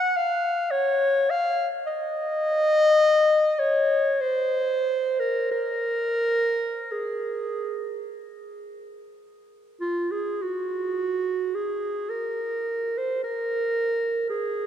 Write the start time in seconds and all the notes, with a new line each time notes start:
Already playing: F#5
0.17 F5
0.71 C#5
1.30 F5
1.87 D#5
3.59 C#5
4.21 C5
5.20 A#4
5.51 A#4
6.92 G#4
9.81 F4
10.11 G#4
10.42 F#4
11.55 G#4
12.10 A#4
12.98 C5
13.24 A#4
14.30 G#4